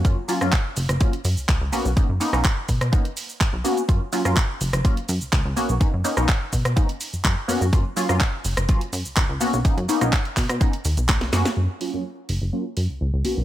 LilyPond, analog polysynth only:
\new Staff \with { instrumentName = "Analog polysynth" } { \time 4/4 \key fis \major \tempo 4 = 125 <fis ais cis' eis'>16 r16 <fis ais cis' eis'>16 <fis ais cis' eis'>16 r4 <fis ais cis' eis'>16 r4 r16 <ais b cis' fis'>16 r16 | <ais b cis' dis'>16 r16 <ais b cis' dis'>16 <ais b cis' dis'>16 r4 <ais b cis' dis'>16 r4 r16 <ais b cis' fis'>16 r16 | <fis ais cis' eis'>16 r16 <fis ais cis' eis'>16 <fis ais cis' eis'>16 r4 <fis ais cis' eis'>16 r4 r16 <ais b cis' fis'>16 r16 | <ais b cis' dis'>16 r16 <ais b cis' dis'>16 <ais b cis' dis'>16 r4 <ais b cis' dis'>16 r4 r16 <ais b cis' fis'>16 r16 |
<fis ais cis' eis'>16 r16 <fis ais cis' eis'>16 <fis ais cis' eis'>16 r4 <fis ais cis' eis'>16 r4 r16 <ais b cis' fis'>16 r16 | <ais b cis' dis'>16 r16 <ais b cis' dis'>16 <ais b cis' dis'>16 r4 <ais b cis' dis'>16 r4 r16 <ais b cis' fis'>16 r16 | <fis ais cis' eis'>16 r16 <fis ais cis' eis'>16 <fis ais cis' eis'>16 r4 <fis ais cis' eis'>16 r4 r16 <ais b cis' fis'>16 r16 | }